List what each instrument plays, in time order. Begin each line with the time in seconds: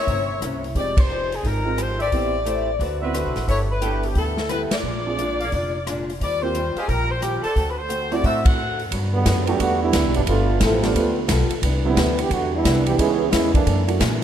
Already playing: trumpet section C4 A#4 C#5 E5, saxophone section C#5
0.07 upright bass G1, steel-string acoustic guitar C3 A#3 C#4 E4, kick, open hi-hat
0.41 upright bass C2, steel-string acoustic guitar C3 A#3 C#4 E4, cross-stick, closed hi-hat
0.64 open hi-hat
0.75 upright bass F1, steel-string acoustic guitar F3 G#3 D#4 G4, grand piano G#3 C4 D#4 G4, saxophone section D5, kick, open hi-hat
0.97 saxophone section C5, kick, ride
1.10 steel-string acoustic guitar F3 G#3 D#4 G4
1.32 saxophone section G#4, open hi-hat
1.43 upright bass G#1, steel-string acoustic guitar F3 G#3 D#4 G4, saxophone section A#4, kick, open hi-hat
1.65 grand piano G#3 C4 D#4 F4
1.77 steel-string acoustic guitar F3 G#3 D#4 G4, saxophone section C5, cross-stick, closed hi-hat
2.00 trumpet section G4 A4 C5 E5, saxophone section D5, open hi-hat
2.12 upright bass A1, steel-string acoustic guitar A3 E4 G4 C5, grand piano B3 C4 E4 G4, kick, open hi-hat
2.45 steel-string acoustic guitar A3 E4 G4 C5, closed hi-hat
2.79 upright bass D2, steel-string acoustic guitar D3 C4 F#4 B4, kick, open hi-hat
3.02 grand piano B3 C4 E4 F#4, trumpet section F#4 B4 C5 E5
3.13 steel-string acoustic guitar D3 C4 F#4 B4, cross-stick, closed hi-hat
3.25 upright bass C2
3.36 upright bass A1, snare, open hi-hat
3.47 upright bass G1, steel-string acoustic guitar G3 B3 E4 A4, trumpet section G4 A4 B4 E5, saxophone section C#5, kick, open hi-hat
3.72 saxophone section B4
3.81 steel-string acoustic guitar G3 B3 E4 A4, grand piano B3 D4 E4 A4, trumpet section G4 A4 B4 G5, closed hi-hat
4.03 saxophone section G4, open hi-hat
4.15 upright bass D2, steel-string acoustic guitar G3 B3 E4 A4, saxophone section A4, kick, open hi-hat
4.37 snare
4.49 steel-string acoustic guitar G3 B3 E4 A4, saxophone section B4, cross-stick, closed hi-hat
4.71 saxophone section D5, muted upright bass stroke, snare, ride
4.83 upright bass A#1, steel-string acoustic guitar A#2 G#3 D4
4.88 steel-string acoustic guitar F4
5.07 grand piano C4 D4 F4 G#4
5.19 steel-string acoustic guitar A#2 G#3 D4 F4, closed hi-hat
5.40 trumpet section G#4 A#4 D5 F5, open hi-hat
5.52 upright bass F1, steel-string acoustic guitar A#2 G#3 D4 F4, kick, open hi-hat
5.87 steel-string acoustic guitar A#2 G#3 D4 F4, cross-stick, closed hi-hat
6.10 open hi-hat
6.20 upright bass D#2, steel-string acoustic guitar D#3 G3 C4, saxophone section D5, kick, open hi-hat
6.25 steel-string acoustic guitar F4
6.41 grand piano A#3 C4 F4 G4, saxophone section C5
6.54 steel-string acoustic guitar D#3 G3 C4 F4, closed hi-hat
6.76 trumpet section G4 C5 D#5 F5, saxophone section G#4, muted upright bass stroke, open hi-hat
6.88 upright bass A#1, steel-string acoustic guitar D#3 G3 C4 F4, saxophone section A#4, kick, open hi-hat
7.11 saxophone section C5
7.21 steel-string acoustic guitar D#3 G3 C4 F4, saxophone section G4, cross-stick, closed hi-hat
7.43 saxophone section A4, trumpet section A4 C5 D5 A5, muted upright bass stroke, open hi-hat
7.55 upright bass D2, steel-string acoustic guitar D3 A3 C4 F#4, kick, open hi-hat
7.71 saxophone section B4
7.78 saxophone section C5
7.88 steel-string acoustic guitar D3 A3 C4 F#4, closed hi-hat
8.12 grand piano A3 C4 E4 F#4, saxophone section D5, open hi-hat
8.23 upright bass A2, steel-string acoustic guitar D3 A3 C4 F#4, trumpet section A4 C5 D5 F#5, saxophone section E5, kick, open hi-hat
8.45 saxophone section F#5, kick, ride
8.58 steel-string acoustic guitar D3 A3 C4 F#4
8.79 open hi-hat
8.91 upright bass G2, steel-string acoustic guitar G2 F#3 B3 D4, kick, ride
9.13 trombone section D3 F#3 G3 B3
9.25 upright bass F#2, steel-string acoustic guitar G2 F#3 B3 D4, kick, snare, hi-hat pedal, ride
9.47 trombone section D3 F#3 B3 G4, grand piano G3 A3 B3 D4 F#4, ride
9.60 upright bass E2, steel-string acoustic guitar G2 F#3 B3 D4, trombone section D3 G3 B3 F#4, kick, ride
9.82 trombone section G3 B3 D4 E4
9.93 upright bass D2, steel-string acoustic guitar G2 F#3 B3 D4, kick, snare, hi-hat pedal, ride
10.05 upright bass B1
10.14 upright bass G1, trombone section F#3 G3 B3 D4, ride
10.27 upright bass G1, steel-string acoustic guitar G3 B3 F4 A4, trombone section A3 B3 D4 F4, kick, ride
10.60 upright bass A1, trombone section F3 A3 C4 E4, steel-string acoustic guitar G3 B3 F4 A4, kick, snare, hi-hat pedal, ride
10.83 trombone section F3 A3 B3 D4, grand piano G3 A3 B3 D4 F4, snare, ride
10.94 upright bass D2, steel-string acoustic guitar G3 B3 F4 A4, kick, ride
11.28 upright bass B1, steel-string acoustic guitar G3 B3 F4 A4, kick, snare, hi-hat pedal, ride
11.49 muted upright bass stroke, ride
11.62 upright bass C2, steel-string acoustic guitar C3 E3 B3 D4, kick, ride
11.85 trombone section D3 E3 G3 B3, grand piano G3 B3 C4 D4 E4
11.96 upright bass D2, steel-string acoustic guitar C3 E3 B3 D4, kick, snare, hi-hat pedal, ride
12.19 trombone section E3 B3 D4 G4, ride
12.30 upright bass E2, steel-string acoustic guitar C3 E3 B3 D4, trombone section D3 G3 B3 F#4, kick, ride
12.54 trombone section G3 B3 D4 E4
12.64 upright bass C2, steel-string acoustic guitar C3 E3 B3 D4, kick, snare, hi-hat pedal, ride
12.86 trombone section E3 B3 D4 G4, ride
12.98 upright bass C#2, steel-string acoustic guitar C#3 G#3 B3 E4, trombone section E3 B3 C#4 G#4, grand piano G#3 B3 C#4 D#4 E4, kick, ride
13.31 upright bass E2, steel-string acoustic guitar C#3 G#3 B3 E4, trombone section G#3 B3 C#4 E4, kick, snare, hi-hat pedal, ride
13.54 trombone section E3 A3 A#3 D4, kick, ride
13.66 steel-string acoustic guitar F#2 E3 A#3 D4, upright bass F#2, kick, ride
13.87 grand piano F#3 A3 A#3 D4 F#4, ride
14.00 steel-string acoustic guitar F#2 E3 A#3 D4, upright bass A#2, kick, snare, hi-hat pedal, ride